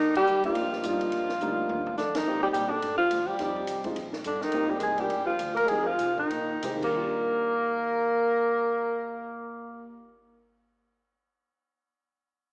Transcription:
Already playing: tenor saxophone D#3, alto saxophone D#4
0.00 upright bass D#2
0.15 tenor saxophone G3, alto saxophone G4, kick, ride
0.26 upright bass C2, hi-hat pedal
0.44 tenor saxophone F3, grand piano G3 A#3 D4 D#4 F4, alto saxophone F4, kick, ride
0.55 upright bass A#1, kick, ride
0.72 snare
0.83 upright bass G1, grand piano G3 A#3 D4 D#4 F4, kick, hi-hat pedal, ride
1.01 ride
1.12 upright bass A#1, kick, ride
1.29 snare
1.40 upright bass D2, grand piano G3 A#3 D4 D#4 F4, hi-hat pedal, high tom
1.69 upright bass D#2, high tom
1.86 floor tom
1.97 upright bass F2, tenor saxophone D3, alto saxophone D4, snare, hi-hat pedal
2.15 tenor saxophone D#3, alto saxophone D#4, snare, ride
2.26 upright bass G#2, grand piano A#3 C4 D#4 G4
2.43 tenor saxophone G3, alto saxophone G4
2.53 upright bass A#2, tenor saxophone G3, alto saxophone G4, kick, hi-hat pedal, ride
2.70 tenor saxophone D3, alto saxophone D4
2.82 upright bass G2, kick, ride
2.98 tenor saxophone F3, alto saxophone F4
3.11 upright bass D#2, kick, hi-hat pedal, ride
3.27 tenor saxophone G3, alto saxophone G4, muted upright bass stroke
3.39 upright bass F2, grand piano G3 C4 D#4 G4, kick, snare, ride
3.56 kick
3.67 upright bass C2, kick, hi-hat pedal, ride
3.84 grand piano G#3 C4 D#4 F4, kick, ride
3.96 upright bass A#1, kick, ride
4.13 snare
4.24 upright bass G1, tenor saxophone D3, alto saxophone D4, kick, hi-hat pedal, ride
4.40 tenor saxophone D#3, alto saxophone D#4, snare
4.52 upright bass G#1, grand piano A#3 C4 D#4 G4, kick, ride
4.68 tenor saxophone G3, alto saxophone G4
4.79 upright bass C2, tenor saxophone G#3, kick, hi-hat pedal, ride
4.83 alto saxophone G#4
4.96 tenor saxophone G3, grand piano A#3 D4 F4 A#4, alto saxophone G4, ride
5.10 upright bass G2, kick, ride
5.25 tenor saxophone F3, alto saxophone F4, muted upright bass stroke
5.39 upright bass D2, kick, hi-hat pedal, ride
5.54 tenor saxophone A#3, alto saxophone A#4, ride
5.67 upright bass F2, tenor saxophone G#3, grand piano G#3, alto saxophone G#4, kick, ride
5.71 grand piano C4 D#4 G4
5.84 tenor saxophone F3, alto saxophone F4
5.99 upright bass C3, kick, hi-hat pedal, ride
6.16 tenor saxophone D#3, alto saxophone D#4, kick
6.30 upright bass A#2, kick, ride
6.62 upright bass C3, grand piano G#3 C4 D#4 G4, kick, hi-hat pedal, ride
6.71 grand piano D#2
6.77 grand piano D#3
6.82 upright bass D#2, grand piano G3, alto saxophone A#3, tenor saxophone A#4, kick, crash
6.90 grand piano D4
6.96 grand piano F4

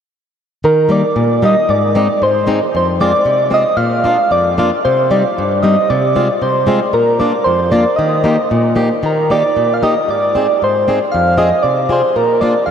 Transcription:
0.64 steel-string acoustic guitar D#3, soft synth lead A#4
0.89 steel-string acoustic guitar G3 A#3 D#4, soft synth lead D5
1.16 steel-string acoustic guitar A#2
1.43 steel-string acoustic guitar G3 A#3 D#4, soft synth lead D#5
1.69 steel-string acoustic guitar G#2, soft synth lead D5
1.95 steel-string acoustic guitar G#3 C4 D#4
2.22 steel-string acoustic guitar G#2, soft synth lead C5
2.47 steel-string acoustic guitar G#3 C4 D#4
2.75 steel-string acoustic guitar F2, soft synth lead C5
3.01 steel-string acoustic guitar G#3 C4 F4, soft synth lead D5
3.25 steel-string acoustic guitar C3
3.50 steel-string acoustic guitar G#3 C4 F4, soft synth lead D#5
3.77 steel-string acoustic guitar A#2, soft synth lead F5
4.04 steel-string acoustic guitar A#3 D4 F4
4.31 steel-string acoustic guitar F2, soft synth lead D5
4.58 steel-string acoustic guitar A#3 D4 F4
4.85 steel-string acoustic guitar C3, soft synth lead C5
5.11 steel-string acoustic guitar G3 C4 D#4, soft synth lead D5
5.38 steel-string acoustic guitar G2
5.63 steel-string acoustic guitar G3 C4 D#4, soft synth lead D#5
5.90 steel-string acoustic guitar C3, soft synth lead D5
6.15 steel-string acoustic guitar G#3 C4 F4
6.42 steel-string acoustic guitar C3, soft synth lead C5
6.67 steel-string acoustic guitar G#3 C4 F4
6.93 steel-string acoustic guitar A#2, soft synth lead A#4
7.20 steel-string acoustic guitar A#3 D4 F4, soft synth lead D5
7.44 steel-string acoustic guitar F2, soft synth lead C5
7.72 steel-string acoustic guitar A#3 D4 F4, soft synth lead D5
7.96 steel-string acoustic guitar D#3, soft synth lead D#5
8.24 steel-string acoustic guitar A#3 D#4 G4
8.51 steel-string acoustic guitar A#2
8.76 steel-string acoustic guitar A#3 D#4 G4
9.03 steel-string acoustic guitar D#3, soft synth lead A#4
9.30 steel-string acoustic guitar A#3 D#4 G4, soft synth lead D5
9.57 steel-string acoustic guitar A#2
9.74 soft synth lead F5
9.83 steel-string acoustic guitar A#3 D#4 G4, soft synth lead D#5
10.08 steel-string acoustic guitar G#2, soft synth lead D5
10.35 steel-string acoustic guitar C4 D#4 G#4
10.62 steel-string acoustic guitar G#2, soft synth lead C5
10.88 steel-string acoustic guitar C4 D#4 G#4
11.12 steel-string acoustic guitar F2, soft synth lead F5
11.38 steel-string acoustic guitar C4 F4 G#4, soft synth lead D#5
11.63 steel-string acoustic guitar C3, soft synth lead D5
11.89 steel-string acoustic guitar C4 F4 G#4, soft synth lead C5
12.16 steel-string acoustic guitar A#2, soft synth lead A#4
12.41 steel-string acoustic guitar A#3 D4 F4, soft synth lead D5
12.66 steel-string acoustic guitar F2, soft synth lead F5

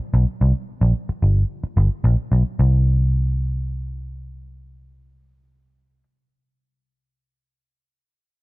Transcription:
0.14 picked electric bass B1
0.41 picked electric bass C2
0.81 picked electric bass A#1
1.09 muted picked electric bass stroke
1.22 picked electric bass G1
1.64 muted picked electric bass stroke
1.77 picked electric bass G1
2.04 picked electric bass A#1
2.32 picked electric bass B1
2.59 picked electric bass C2

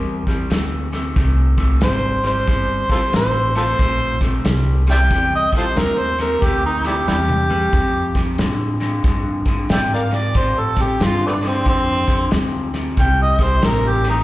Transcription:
Already playing: upright bass E2, clean electric guitar C3 G3
0.27 clean electric guitar C3 G3, kick, snare, closed hi-hat
0.50 upright bass D2, clean electric guitar C3 A3, snare, closed hi-hat
0.93 clean electric guitar C3 A3, snare, closed hi-hat
1.16 upright bass C2, clean electric guitar C3 A3, kick, snare, closed hi-hat
1.58 clean electric guitar C3 A3, kick, snare, closed hi-hat
1.81 upright bass G#1, clean electric guitar C3 G3, harmonica C5, snare, closed hi-hat
2.24 clean electric guitar C3 G3, harmonica C5, snare, closed hi-hat
2.47 upright bass G1, clean electric guitar C3 G3, kick, snare, closed hi-hat
2.89 clean electric guitar C3 G3, harmonica F4 A4 C5, kick, snare, closed hi-hat
3.13 upright bass A1, clean electric guitar C3 A3, harmonica C5, snare, closed hi-hat
3.56 clean electric guitar C3 A3, harmonica F4 A4 C5, snare, closed hi-hat
3.79 upright bass A#1, clean electric guitar C3 A3, kick, snare, closed hi-hat
4.21 clean electric guitar C3 A3, kick, snare, closed hi-hat
4.45 upright bass C2, clean electric guitar C3 G3, snare, closed hi-hat
4.87 clean electric guitar C3 G3, snare, closed hi-hat
4.91 harmonica D5 E5 G5
5.11 upright bass E2, clean electric guitar C3 G3, kick, snare, closed hi-hat
5.36 harmonica D#5
5.52 clean electric guitar C3 G3, muted upright bass stroke, kick, snare, closed hi-hat
5.57 harmonica F4 A4 C5
5.76 upright bass D#2, clean electric guitar C3 A3, harmonica A#4, snare, closed hi-hat
5.99 harmonica C5
6.18 clean electric guitar C3 A3, harmonica A#4, snare, closed hi-hat
6.42 upright bass D2, clean electric guitar C3 A3, harmonica G4, kick, snare, closed hi-hat
6.66 harmonica D#4
6.84 clean electric guitar C3 A3, harmonica D4 E4 G4, snare, closed hi-hat
7.08 upright bass E2, clean electric guitar C3 G3, harmonica D4 E4 G4, snare
7.29 mid tom
7.50 clean electric guitar C3 G3, floor tom
7.73 upright bass F2, clean electric guitar F2 C3, kick, snare, closed hi-hat
8.15 clean electric guitar F2 C3, kick, snare, closed hi-hat
8.38 clean electric guitar F2 D3, upright bass A2, snare, closed hi-hat
8.80 clean electric guitar F2 D3, snare, closed hi-hat
9.04 clean electric guitar F2 D3, upright bass G2, kick, snare, closed hi-hat
9.45 clean electric guitar F2 D3, kick, snare, closed hi-hat
9.69 clean electric guitar F2 C3, upright bass G#2, harmonica D5 E5 G5, snare, closed hi-hat
9.94 harmonica A#4 D5 F5
10.11 clean electric guitar F2 C3, snare, closed hi-hat
10.15 harmonica D5
10.34 clean electric guitar F2 C3, upright bass A2, harmonica C5, kick, snare, closed hi-hat
10.60 harmonica A4
10.76 clean electric guitar F2 C3, kick, snare, closed hi-hat
10.82 harmonica G4
11.00 clean electric guitar F2 D3, upright bass G2, harmonica F4, snare, closed hi-hat
11.26 harmonica A3 B3 D4
11.42 clean electric guitar F2 D3, snare, closed hi-hat
11.47 harmonica C4
11.65 clean electric guitar F2 D3, upright bass F2, harmonica C4, kick, snare, closed hi-hat
12.07 clean electric guitar F2 D3, kick, snare, closed hi-hat
12.31 upright bass D2, clean electric guitar F2 C3, snare, closed hi-hat
12.74 clean electric guitar F2 C3, snare, closed hi-hat
12.97 upright bass C2, clean electric guitar C3 G3, harmonica G5, kick, snare, closed hi-hat
13.22 harmonica D#5
13.39 clean electric guitar C3 G3, kick, snare, closed hi-hat
13.44 harmonica C5
13.62 upright bass A1, clean electric guitar C3 A3, harmonica A#4, snare, closed hi-hat
13.88 harmonica G4
14.04 clean electric guitar C3 A3, snare, closed hi-hat
14.10 harmonica D#4

